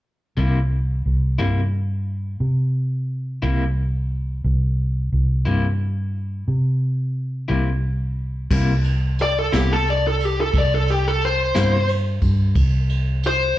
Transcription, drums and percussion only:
8.51 kick loud
8.51 crash loud
8.84 ride medium
9.19 ride medium
9.53 snare loud
9.53 ride medium
9.87 ride medium
10.20 ride medium
10.54 kick loud
10.54 ride medium
10.88 ride medium
11.21 ride medium
11.55 snare medium
11.55 ride medium
11.89 ride medium
12.22 kick medium
12.22 ride medium
12.55 kick loud
12.55 ride medium
12.89 ride medium
13.23 ride medium

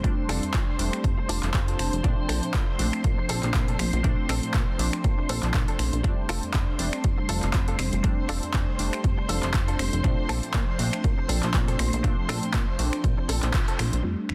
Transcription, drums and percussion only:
0.04 kick loud
0.04 closed hi-hat medium
0.29 finger snap medium
0.29 open hi-hat loud
0.43 closed hi-hat medium
0.54 kick loud
0.54 clap loud
0.54 closed hi-hat medium
0.79 open hi-hat loud
0.93 finger snap medium
0.93 closed hi-hat medium
1.04 kick loud
1.04 closed hi-hat medium
1.29 open hi-hat loud
1.43 clap soft
1.43 closed hi-hat medium
1.54 kick loud
1.54 clap loud
1.54 closed hi-hat medium
1.68 closed hi-hat medium
1.79 finger snap medium
1.79 open hi-hat loud
1.93 closed hi-hat medium
2.04 kick loud
2.04 closed hi-hat medium
2.29 finger snap medium
2.29 open hi-hat loud
2.43 closed hi-hat soft
2.54 kick loud
2.54 clap loud
2.54 closed hi-hat medium
2.79 open hi-hat loud
2.93 finger snap medium
2.93 closed hi-hat medium
3.04 kick loud
3.04 closed hi-hat medium
3.29 open hi-hat loud
3.43 clap soft
3.43 closed hi-hat soft
3.54 kick loud
3.54 clap loud
3.54 closed hi-hat medium
3.68 closed hi-hat medium
3.79 finger snap medium
3.79 open hi-hat loud
3.93 closed hi-hat medium
4.04 kick loud
4.04 closed hi-hat medium
4.29 finger snap medium
4.29 open hi-hat loud
4.43 closed hi-hat soft
4.54 kick loud
4.54 clap loud
4.54 closed hi-hat medium
4.79 open hi-hat loud
4.93 finger snap medium
4.93 closed hi-hat soft
5.04 kick loud
5.04 closed hi-hat medium
5.29 open hi-hat loud
5.43 clap soft
5.43 closed hi-hat soft
5.54 kick loud
5.54 clap loud
5.54 closed hi-hat medium
5.68 closed hi-hat medium
5.79 finger snap medium
5.79 open hi-hat loud
5.93 closed hi-hat soft
6.04 kick loud
6.04 closed hi-hat medium
6.29 finger snap medium
6.29 open hi-hat loud
6.43 closed hi-hat medium
6.54 kick loud
6.54 clap loud
6.54 closed hi-hat medium
6.79 open hi-hat loud
6.93 finger snap medium
6.93 closed hi-hat medium
7.04 kick loud
7.04 closed hi-hat medium
7.29 open hi-hat loud
7.42 clap soft
7.42 closed hi-hat soft
7.53 kick loud
7.53 clap loud
7.53 closed hi-hat medium
7.68 closed hi-hat medium
7.79 finger snap medium
7.79 open hi-hat loud
7.93 closed hi-hat soft
8.04 kick loud
8.04 closed hi-hat medium
8.29 finger snap medium
8.29 open hi-hat loud
8.43 closed hi-hat medium
8.54 kick loud
8.54 clap loud
8.54 closed hi-hat medium
8.79 open hi-hat loud
8.93 finger snap medium
8.93 closed hi-hat medium
9.04 kick loud
9.04 closed hi-hat medium
9.29 open hi-hat loud
9.43 clap soft
9.43 closed hi-hat medium
9.54 kick loud
9.54 clap loud
9.54 closed hi-hat medium
9.68 closed hi-hat medium
9.79 finger snap medium
9.79 open hi-hat loud
9.93 closed hi-hat medium
10.04 kick loud
10.04 closed hi-hat medium
10.29 finger snap medium
10.29 open hi-hat loud
10.43 closed hi-hat medium
10.54 kick loud
10.54 clap loud
10.54 closed hi-hat medium
10.79 open hi-hat loud
10.93 finger snap medium
10.93 closed hi-hat medium
11.04 kick loud
11.04 closed hi-hat medium
11.29 open hi-hat loud
11.43 clap soft
11.43 closed hi-hat medium
11.54 kick loud
11.54 clap loud
11.54 closed hi-hat medium
11.68 closed hi-hat medium
11.79 finger snap medium
11.79 open hi-hat loud
11.93 closed hi-hat medium
12.04 kick loud
12.04 closed hi-hat medium
12.29 finger snap medium
12.29 open hi-hat loud
12.43 closed hi-hat medium
12.54 kick loud
12.54 clap loud
12.54 closed hi-hat medium
12.79 open hi-hat loud
12.93 finger snap medium
12.93 closed hi-hat medium
13.04 kick loud
13.04 closed hi-hat medium
13.29 open hi-hat loud
13.43 clap soft
13.43 closed hi-hat medium
13.54 kick loud
13.54 clap loud
13.54 closed hi-hat medium
13.68 closed hi-hat medium
13.79 finger snap medium
13.79 open hi-hat loud
13.93 closed hi-hat medium
14.29 finger snap medium

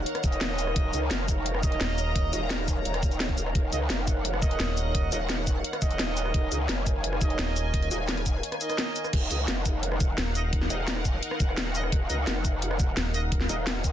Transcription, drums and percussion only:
0.06 closed hi-hat medium
0.15 cross-stick medium
0.15 closed hi-hat soft
0.24 kick loud
0.24 closed hi-hat medium
0.24 shaker medium
0.32 closed hi-hat soft
0.32 shaker soft
0.41 snare loud
0.41 closed hi-hat medium
0.59 closed hi-hat medium
0.59 shaker medium
0.67 cross-stick soft
0.76 kick loud
0.76 closed hi-hat loud
0.93 closed hi-hat medium
0.93 shaker medium
1.11 snare loud
1.11 closed hi-hat medium
1.20 cross-stick soft
1.28 kick medium
1.28 closed hi-hat medium
1.28 shaker medium
1.46 closed hi-hat medium
1.55 cross-stick soft
1.63 kick loud
1.63 closed hi-hat medium
1.63 shaker medium
1.72 closed hi-hat soft
1.81 snare loud
1.81 closed hi-hat medium
1.98 closed hi-hat medium
1.98 shaker medium
2.16 kick loud
2.16 closed hi-hat medium
2.33 closed hi-hat medium
2.33 shaker medium
2.50 snare loud
2.50 closed hi-hat medium
2.59 cross-stick soft
2.68 kick medium
2.68 closed hi-hat medium
2.68 shaker medium
2.85 closed hi-hat medium
2.94 cross-stick soft
2.94 closed hi-hat soft
3.03 kick loud
3.03 closed hi-hat medium
3.03 shaker medium
3.11 closed hi-hat soft
3.11 shaker soft
3.20 snare loud
3.20 closed hi-hat medium
3.29 kick medium
3.38 closed hi-hat medium
3.38 shaker medium
3.46 cross-stick soft
3.55 kick loud
3.55 closed hi-hat medium
3.73 closed hi-hat medium
3.73 shaker medium
3.90 snare loud
3.90 closed hi-hat medium
3.99 cross-stick soft
4.07 kick medium
4.07 closed hi-hat medium
4.07 shaker medium
4.25 closed hi-hat medium
4.34 cross-stick soft
4.42 kick loud
4.42 closed hi-hat medium
4.42 shaker medium
4.51 closed hi-hat soft
4.60 snare loud
4.60 closed hi-hat medium
4.77 closed hi-hat medium
4.77 shaker medium
4.95 kick loud
4.95 closed hi-hat medium
5.12 closed hi-hat medium
5.12 shaker medium
5.30 snare loud
5.30 closed hi-hat medium
5.38 cross-stick soft
5.47 kick medium
5.47 closed hi-hat medium
5.47 shaker medium
5.64 closed hi-hat medium
5.73 cross-stick soft
5.73 closed hi-hat soft
5.82 kick loud
5.82 closed hi-hat medium
5.82 shaker medium
5.91 closed hi-hat soft
5.91 shaker soft
5.99 snare loud
5.99 closed hi-hat medium
6.17 closed hi-hat medium
6.17 shaker medium
6.25 cross-stick soft
6.34 kick loud
6.34 closed hi-hat loud
6.52 closed hi-hat medium
6.52 shaker medium
6.69 snare loud
6.69 closed hi-hat loud
6.78 cross-stick soft
6.86 kick medium
6.86 closed hi-hat medium
6.86 shaker medium
7.04 closed hi-hat medium
7.13 cross-stick soft
7.21 kick loud
7.21 closed hi-hat medium
7.21 shaker medium
7.30 closed hi-hat soft
7.39 snare loud
7.39 closed hi-hat loud
7.56 closed hi-hat medium
7.56 shaker medium
7.74 kick loud
7.74 closed hi-hat loud
7.82 closed hi-hat soft
7.91 closed hi-hat medium
7.91 shaker medium
8.09 snare loud
8.09 closed hi-hat loud
8.17 cross-stick soft
8.17 closed hi-hat soft
8.26 kick medium
8.26 closed hi-hat medium
8.26 shaker medium
8.43 closed hi-hat loud
8.52 cross-stick soft
8.52 closed hi-hat soft
8.61 closed hi-hat medium
8.61 shaker medium
8.70 cross-stick soft
8.70 closed hi-hat soft
8.70 shaker soft
8.78 snare loud
8.78 closed hi-hat loud
8.96 closed hi-hat medium
8.96 shaker medium
9.04 cross-stick soft
9.04 shaker soft
9.13 kick loud
9.13 closed hi-hat loud
9.13 crash loud
9.31 closed hi-hat medium
9.31 shaker medium
9.48 snare loud
9.48 closed hi-hat loud
9.57 cross-stick soft
9.66 kick medium
9.66 closed hi-hat medium
9.66 shaker medium
9.83 closed hi-hat loud
9.92 cross-stick medium
10.00 kick loud
10.00 closed hi-hat medium
10.00 shaker medium
10.18 snare loud
10.18 closed hi-hat loud
10.35 closed hi-hat medium
10.35 shaker medium
10.53 kick loud
10.53 closed hi-hat loud
10.62 snare soft
10.70 closed hi-hat medium
10.70 shaker medium
10.88 snare loud
10.88 closed hi-hat loud
10.96 cross-stick soft
11.05 kick medium
11.05 closed hi-hat medium
11.05 shaker medium
11.23 closed hi-hat medium
11.31 cross-stick soft
11.40 kick loud
11.40 closed hi-hat medium
11.40 shaker medium
11.49 cross-stick soft
11.57 snare loud
11.57 closed hi-hat loud
11.75 closed hi-hat medium
11.75 shaker medium
11.84 cross-stick soft
11.92 kick loud
11.92 closed hi-hat medium
12.10 closed hi-hat medium
12.10 shaker medium
12.27 snare loud
12.27 closed hi-hat medium
12.36 cross-stick soft
12.45 kick medium
12.45 closed hi-hat medium
12.45 shaker medium
12.62 closed hi-hat medium
12.71 cross-stick soft
12.80 kick loud
12.80 closed hi-hat medium
12.80 shaker medium
12.97 snare loud
12.97 closed hi-hat medium
13.14 closed hi-hat medium
13.14 shaker medium
13.32 kick loud
13.32 closed hi-hat medium
13.41 snare soft
13.49 closed hi-hat medium
13.49 shaker medium
13.67 snare loud
13.67 closed hi-hat medium
13.76 cross-stick soft
13.84 kick medium
13.84 closed hi-hat medium
13.84 shaker medium

